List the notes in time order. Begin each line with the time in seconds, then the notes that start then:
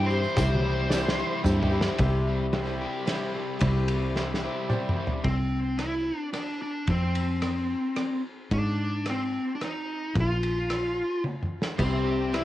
Already playing: G2 C3 E3 C4 E4 G4 C5 D5
0.00 G3
0.06 C5, tambourine
0.11 C4 E4 G4
0.23 G3 C4 E4, tambourine
0.36 C2 C3 E3 G3 C4 E4 G4 C5 E5, kick, snare, tambourine
0.41 E4
0.55 high tom
0.65 E3 G3 C4 E4
0.77 G3 C4 E4
0.89 C3 E3 G3 E4 G4 C5 D5, snare, tambourine
0.93 C4 E4 G4
1.08 snare
1.18 E3 G3 C4 E4 G4, tambourine
1.32 G3 C4 E4
1.43 G2 G3 C4 E4 G4 C5 E5, floor tom, tambourine
1.60 G3 C4 E4, floor tom
1.71 C4 E4 G4
1.81 snare
1.86 G3 C4 E4
1.98 C2 C3 G3 C4 E4 G4 C5 E5, kick, ride
2.28 G3
2.53 G3 C4 E4 G4 C5 E5, snare, ride
2.81 G4
3.06 G3 C4 E4 G4 C5 E5, snare, ride
3.36 G3
3.59 C2 C3 G3 C4 E4 G4, kick, ride
3.88 G3, ride
4.15 G3 C4 E4 G4 C5 E5, snare
4.34 snare
4.42 C4 E4 G4
4.68 G3 C4 E4 G4 C5 D5, mid tom
4.72 G4
4.89 mid tom
4.96 G3
5.07 floor tom
5.24 C2 C4, kick, ride
5.78 E4, cross-stick, ride
6.18 D4
6.33 D4, cross-stick, ride
6.62 D4
6.87 F2 C4, kick, ride
7.15 ride
7.42 cross-stick, ride
7.96 cross-stick, ride
8.51 G#2 D4, kick, ride
9.06 C4, cross-stick, ride
9.55 D4
9.61 D#4, cross-stick, ride
10.15 A#1, kick, ride
10.20 F4
10.43 ride
10.70 cross-stick, ride
11.24 high tom
11.43 mid tom
11.62 snare
11.77 C2 C3 G3 C4 E4 G4, kick, ride, splash
12.05 G4
12.32 G3 C4 E4 G4, cross-stick, ride